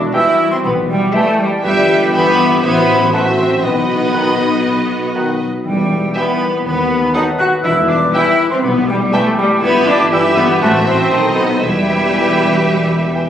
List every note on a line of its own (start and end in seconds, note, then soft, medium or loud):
0.00 0.63 E3 medium
0.00 0.14 G3 soft
0.00 0.80 B3 soft
0.00 0.14 D4 medium
0.00 1.10 F#4 medium
0.00 0.30 B4 soft
0.13 0.31 E3 soft
0.13 0.47 G3 soft
0.13 0.51 E4 medium
0.13 0.52 G4 medium
0.13 0.52 B4 medium
0.13 0.52 E5 medium
0.13 0.30 G5 medium
0.13 0.51 E6 medium
0.32 1.30 B4 medium
0.48 0.98 G3 medium
0.48 0.57 C4 medium
0.48 0.64 C4 medium
0.48 0.57 C6 medium
0.64 1.04 B1 medium
0.64 1.66 E3 soft
0.64 0.72 B3 medium
0.64 0.90 B3 medium
0.64 0.71 B5 medium
0.81 1.13 B3 soft
0.89 1.14 G3 medium
0.89 1.14 G5 medium
0.99 1.46 G3 medium
1.14 1.31 E3 medium
1.14 1.38 A3 medium
1.14 1.39 A3 medium
1.14 2.65 B3 medium
1.14 1.65 E4 medium
1.14 1.51 G4 medium
1.14 1.52 B4 medium
1.14 1.51 E5 medium
1.14 1.31 G5 medium
1.14 1.41 A5 medium
1.31 2.65 B4 medium
1.39 1.50 G3 loud
1.39 1.47 G3 medium
1.39 1.64 G5 medium
1.47 1.96 G3 medium
1.63 2.59 G1 medium
1.63 2.65 G2 medium
1.63 2.12 G3 medium
1.63 2.13 G3 medium
1.63 2.10 G4 medium
1.63 2.13 B4 medium
1.63 2.10 B4 medium
1.63 2.10 E5 medium
1.63 2.12 G5 medium
1.80 2.12 E3 medium
1.97 2.65 G3 medium
2.13 2.45 E3 medium
2.13 2.30 E3 medium
2.13 2.63 B3 loud
2.13 2.62 B3 medium
2.13 2.62 G4 medium
2.13 2.63 G4 medium
2.13 2.63 B4 medium
2.13 2.62 E5 medium
2.13 2.30 G5 medium
2.13 2.62 B5 loud
2.30 3.29 E4 medium
2.46 2.65 E3 medium
2.62 3.66 A1 medium
2.62 3.62 A1 medium
2.62 3.65 A2 medium
2.62 3.12 B3 loud
2.62 3.12 B3 medium
2.62 3.13 E4 medium
2.62 3.12 F#4 medium
2.62 3.13 C5 medium
2.62 3.12 E5 medium
2.62 3.12 B5 medium
2.79 3.12 E3 soft
2.97 3.96 F#3 medium
3.13 3.46 E3 soft
3.13 3.29 E3 medium
3.13 3.22 A3 medium
3.13 3.39 A3 medium
3.13 3.63 F#4 medium
3.13 3.63 C5 medium
3.13 3.63 E5 medium
3.13 3.30 F#5 medium
3.13 3.19 A5 medium
3.30 3.65 E4 medium
3.37 3.47 C4 medium
3.37 3.64 C4 medium
3.37 3.43 C6 medium
3.47 3.66 E3 soft
3.63 5.45 B1 medium
3.63 4.63 B2 medium
3.63 5.15 B3 medium
3.63 5.12 B3 medium
3.63 5.37 D#4 medium
3.63 5.41 F#4 medium
3.63 5.41 B4 medium
3.63 5.44 D#5 medium
3.63 5.12 B5 medium
3.81 4.13 B3 soft
3.97 4.79 F#3 soft
4.13 4.30 D#3 medium
4.13 4.46 B3 soft
4.13 4.29 F#5 medium
4.31 5.30 D#4 soft
4.47 4.97 B3 soft
4.65 5.67 B2 soft
4.81 5.13 F#3 soft
4.98 5.47 B3 soft
5.14 5.31 D#3 soft
5.14 5.67 F#3 soft
5.14 5.31 F#5 soft
5.31 5.67 D#4 soft
5.48 9.38 B3 soft
5.64 6.06 E1 medium
5.64 6.06 E2 medium
5.64 6.66 E3 medium
5.64 6.11 G3 medium
5.64 6.13 G3 medium
5.64 6.12 G5 medium
5.81 6.14 G3 soft
5.98 6.67 E4 soft
6.14 6.31 E3 soft
6.14 6.46 G3 soft
6.14 6.64 B3 medium
6.14 6.22 G4 medium
6.14 6.23 B4 soft
6.14 6.23 E5 soft
6.14 6.33 G5 medium
6.14 6.64 B5 medium
6.32 8.28 B4 medium
6.48 6.66 G3 soft
6.64 7.06 D#2 medium
6.64 7.66 D#3 soft
6.64 7.13 B3 medium
6.64 7.14 B3 medium
6.64 8.60 B4 medium
6.64 7.13 B5 medium
6.81 7.13 D#4 soft
6.98 7.66 A3 medium
7.14 7.31 F#3 medium
7.14 7.22 D#4 medium
7.14 7.45 D#4 soft
7.14 7.26 D#4 medium
7.14 7.22 A4 medium
7.14 7.22 B4 soft
7.14 7.22 F#5 medium
7.14 7.32 A5 soft
7.14 7.20 D#6 medium
7.30 7.66 F#4 medium
7.39 7.47 F#4 medium
7.39 7.51 F#4 medium
7.39 7.45 F#6 medium
7.47 7.66 D#4 soft
7.63 8.05 E1 medium
7.63 8.05 E2 medium
7.63 8.61 E3 medium
7.63 7.72 E4 medium
7.63 7.89 E4 medium
7.63 7.90 E6 medium
7.80 8.12 G3 soft
7.88 7.97 D4 medium
7.88 8.14 D4 medium
7.88 8.13 D6 medium
7.96 8.77 E4 medium
8.13 8.31 E3 soft
8.13 8.45 G3 medium
8.13 8.50 E4 medium
8.13 8.51 E4 medium
8.13 8.22 G4 medium
8.13 8.21 B4 soft
8.13 8.22 E5 medium
8.13 8.30 G5 medium
8.13 8.50 E6 medium
8.29 9.28 B4 medium
8.46 8.94 G3 medium
8.50 8.63 C4 medium
8.50 8.57 C4 medium
8.50 8.56 C6 medium
8.62 9.04 B1 medium
8.62 9.05 B1 medium
8.62 9.64 E3 soft
8.62 8.88 B3 medium
8.62 8.75 B3 medium
8.62 9.64 G4 medium
8.62 8.69 B5 medium
8.78 9.11 E4 medium
8.88 8.99 G3 loud
8.88 9.13 G3 medium
8.88 8.95 G5 medium
8.95 9.44 G3 medium
9.12 9.29 E3 medium
9.12 9.38 A3 medium
9.12 10.27 E4 medium
9.12 9.20 G4 medium
9.12 9.21 B4 medium
9.12 9.21 E5 medium
9.12 9.30 G5 medium
9.12 9.19 A5 medium
9.29 10.64 B4 medium
9.38 9.62 G3 medium
9.38 9.49 G3 loud
9.38 9.44 G5 medium
9.46 9.95 G3 medium
9.61 10.57 G1 medium
9.61 10.63 G1 medium
9.61 10.64 G2 medium
9.61 9.87 B3 loud
9.61 9.87 B3 medium
9.61 10.12 E4 medium
9.61 10.08 G4 medium
9.61 10.08 B4 medium
9.61 10.08 E5 medium
9.61 9.89 B5 loud
9.79 10.11 E3 medium
9.87 9.98 D4 loud
9.87 10.12 D4 medium
9.87 10.11 D6 medium
9.96 10.64 G3 medium
10.11 10.44 E3 medium
10.11 10.28 E3 medium
10.11 10.36 E4 medium
10.11 10.20 E4 medium
10.11 10.61 G4 medium
10.11 10.61 B4 medium
10.11 10.60 E5 medium
10.11 10.29 G5 medium
10.11 10.36 E6 medium
10.28 10.93 E4 medium
10.36 10.61 B3 loud
10.36 10.45 B3 loud
10.36 10.43 B5 medium
10.45 10.64 E3 medium
10.61 11.11 A1 medium
10.61 11.12 A1 medium
10.61 11.14 A2 medium
10.61 10.77 E3 medium
10.61 10.86 A3 loud
10.61 10.70 A3 loud
10.61 11.12 F#4 medium
10.61 11.13 F#4 medium
10.61 11.10 C5 medium
10.61 11.11 E5 medium
10.61 10.79 F#5 medium
10.61 10.69 A5 medium
10.78 11.64 F#3 medium
10.85 11.36 C4 loud
10.85 11.36 C4 medium
10.85 11.36 C6 medium
10.94 11.13 E4 medium
10.94 11.44 C5 medium
11.11 11.61 B1 medium
11.11 11.63 B1 medium
11.11 11.64 B2 medium
11.11 11.28 D#3 medium
11.11 11.63 D#4 medium
11.11 11.61 A4 medium
11.11 11.61 C5 medium
11.11 11.62 D#5 medium
11.11 11.29 A5 medium
11.28 11.64 A3 medium
11.36 11.48 B3 medium
11.36 11.62 B3 medium
11.36 11.43 B5 medium
11.45 11.64 D#4 soft
11.45 11.64 C5 medium
11.62 13.29 E1 medium
11.62 13.29 E2 medium
11.62 12.62 E3 medium
11.62 13.11 G3 medium
11.62 13.29 E4 medium
11.62 13.29 G4 medium
11.62 13.29 B4 medium
11.62 13.29 E5 medium
11.62 13.11 G5 medium
11.80 12.12 G3 soft
11.96 12.79 E4 soft
12.13 12.29 E3 soft
12.13 12.45 G3 soft
12.13 12.29 G5 medium
12.30 13.29 B4 medium
12.46 12.97 G3 soft
12.64 13.29 E3 soft
12.80 13.13 E4 soft
12.98 13.29 G3 soft
13.14 13.29 E3 soft
13.14 13.29 E4 soft
13.14 13.29 G5 soft